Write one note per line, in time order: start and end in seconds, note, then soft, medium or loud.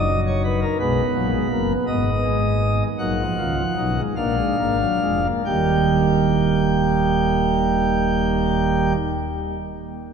0.00 0.65 F#1 medium
0.00 0.65 F#2 medium
0.00 0.65 F#3 loud
0.00 0.65 D#4 medium
0.00 0.20 D#5 medium
0.27 0.42 C#5 medium
0.44 0.59 B4 medium
0.62 0.77 A#4 medium
0.80 1.02 B1 medium
0.80 1.02 B2 medium
0.80 1.02 G#3 loud
0.80 1.85 B3 medium
0.80 1.72 B4 medium
1.14 1.37 A#1 medium
1.14 1.37 A#2 medium
1.14 1.30 F#3 loud
1.32 1.48 G#3 medium
1.50 1.73 F#1 medium
1.50 1.73 F#2 medium
1.50 1.73 A#3 medium
1.87 2.83 G#1 medium
1.87 2.83 G#2 medium
1.87 2.10 B3 loud
1.87 2.83 D#5 medium
2.23 2.88 G#3 loud
2.98 3.22 A#1 medium
2.98 3.23 A#2 medium
2.98 3.15 F#3 medium
2.98 3.23 D#4 medium
2.98 4.01 F#5 medium
3.19 3.35 F3 medium
3.38 3.62 C#2 medium
3.38 3.62 C#3 medium
3.38 3.54 D#3 medium
3.38 3.62 F4 medium
3.57 3.74 F3 medium
3.77 4.02 B1 medium
3.77 4.02 B2 medium
3.77 3.94 F#3 medium
3.77 4.02 D#4 medium
3.96 4.14 G#3 medium
4.16 4.43 A#1 medium
4.16 4.42 A#2 medium
4.16 4.35 A#3 medium
4.16 5.27 D4 medium
4.16 5.27 F5 medium
4.37 4.56 G#3 medium
4.58 4.85 G#1 medium
4.58 4.85 G#2 medium
4.58 4.77 A#3 medium
4.79 4.98 F#3 medium
5.01 5.28 F1 medium
5.01 5.28 F2 medium
5.01 5.20 G#3 medium
5.23 5.42 A#3 medium
5.45 8.93 D#1 medium
5.45 8.93 D#2 medium
5.45 8.95 D#3 medium
5.45 8.96 G3 medium
5.45 8.92 A#3 medium
5.45 8.93 G4 medium
5.45 8.93 G5 medium